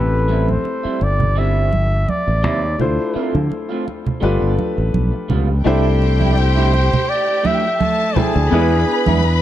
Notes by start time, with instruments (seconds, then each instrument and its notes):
Already playing: fingered electric bass A1, grand piano A3 C4 E4 G4 A4, flugelhorn B4
0.28 clean electric guitar G3 C4 E4, muted conga
0.48 flugelhorn C5, high conga
0.64 muted clean electric guitar stroke, muted conga
0.83 clean electric guitar G3 C4 E4, muted fingered electric bass stroke
1.00 fingered electric bass G1, flugelhorn D5, muted clean electric guitar stroke, muted conga
1.19 muted clean electric guitar stroke, low conga
1.36 clean electric guitar G3 C4 E4, flugelhorn E5
1.71 muted clean electric guitar stroke, muted conga, high conga
1.90 muted clean electric guitar stroke
2.07 flugelhorn D5, muted clean electric guitar stroke, high conga
2.26 fingered electric bass A1, muted clean electric guitar stroke
2.43 fingered electric bass D#2, clean electric guitar G3 C4 E4, high conga, low conga
2.62 muted clean electric guitar stroke
2.78 fingered electric bass D2, grand piano A3 D4 E4 F4 C5, flugelhorn C5, low conga
3.14 clean electric guitar A3 C4 F4, muted fingered electric bass stroke
3.35 fingered electric bass D3, high conga
3.50 muted clean electric guitar stroke, muted conga
3.69 clean electric guitar A3 C4 F4
3.85 muted clean electric guitar stroke, muted conga
4.05 muted clean electric guitar stroke, low conga
4.20 fingered electric bass G1, clean electric guitar G3 B3 F4, grand piano A3 D4 F4 G4 B4, muted conga
4.42 fingered electric bass G1
4.57 muted clean electric guitar stroke, muted conga, high conga
4.76 fingered electric bass A1, muted clean electric guitar stroke
4.94 fingered electric bass B1, muted conga, high conga
5.12 muted clean electric guitar stroke
5.29 fingered electric bass C#2, clean electric guitar G3 B3 F4, muted conga, high conga, low conga
5.48 muted clean electric guitar stroke
5.64 fingered electric bass C2, grand piano A3 D4 E4 G4 C5, clean electric guitar A3 D4 E4, string section G4 G5
6.01 muted clean electric guitar stroke, muted conga
6.20 clean electric guitar A3 D4 E4, high conga
6.32 flugelhorn D5, muted clean electric guitar stroke
6.38 flugelhorn C5, muted conga
6.55 clean electric guitar A3 D4 E4
6.72 muted clean electric guitar stroke, muted conga
6.91 muted clean electric guitar stroke, low conga
7.09 flugelhorn D5
7.27 muted clean electric guitar stroke
7.43 clean electric guitar A3 D4 E4, flugelhorn E5, muted conga, high conga
7.63 muted clean electric guitar stroke
7.79 string section A3 A5, muted clean electric guitar stroke, muted conga, high conga
7.99 muted clean electric guitar stroke
8.14 clean electric guitar A3 D4 E4, grand piano A3 D4 E4 C5 G5, muted fingered electric bass stroke, muted conga, high conga, low conga
8.19 flugelhorn G#4
8.34 fingered electric bass D2, muted clean electric guitar stroke
8.51 fingered electric bass E2, clean electric guitar G#3 D4 E4, grand piano B3 D4 E4 G#4 B4, string section B4 B5
8.87 muted clean electric guitar stroke
9.06 fingered electric bass E2, clean electric guitar G#3 D4 E4, high conga
9.22 muted clean electric guitar stroke, muted conga